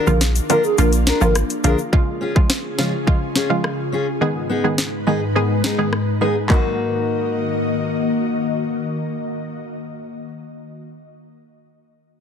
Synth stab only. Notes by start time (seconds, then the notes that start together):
0.07 D3 F3 A#3 F4
0.50 D3 F3 A#3 F4
0.78 D3 F3 A#3 F4
1.21 D3 F3 A#3 F4
1.64 D3 F3 A#3 F4
1.92 C#3 F3 G#3 F4
2.35 C#3 F3 G#3 F4
2.78 C#3 F3 G#3 F4
3.07 C#3 F3 G#3 F4
3.50 C#3 F3 G#3 F4
4.21 D#3 G#3 B3 G#4
4.64 D#3 G#3 B3 G#4
5.07 D#3 G#3 B3 G#4
5.35 D#3 G#3 B3 G#4
5.78 D#3 G#3 B3 G#4
6.21 D#3 G#3 B3 G#4
6.49 D#3 F#3 A#3 F#4